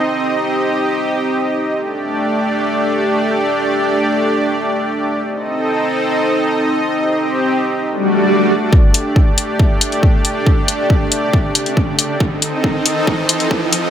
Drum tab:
HH |----------------|----------------|----------------|----------------|
BD |----------------|----------------|----------------|----------------|

HH |----------------|--x---x---xx--x-|--x---x---xx--x-|--x---x---xx--x-|
BD |----------------|o---o---o---o---|o---o---o---o---|o---o---o---o---|